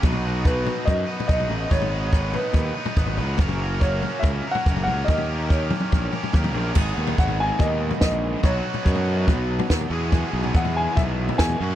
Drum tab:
CC |----------------|----------------|----------------|----------------|
SD |----------------|----------------|----------------|----------------|
T2 |----------------|----------------|----------------|------oo----oo--|
FT |oo----o-o--o-oo-|oo----o-o--o-oo-|oo----o-o--o-oo-|oo----o-o-oo-oo-|
BD |o---o---o---o---|o---o---o---o---|o---o---o---o---|o---o---o---o---|

CC |x---------------|----------------|----------------|
SD |------------o---|------------o---|------------o---|
T2 |----------------|----------------|----------------|
FT |o--o-o--o--o-o--|o--o-o--o--o-o--|o--o-o--o--o-o--|
BD |o---o---o---o---|o---o---o---o---|o---o---o---o---|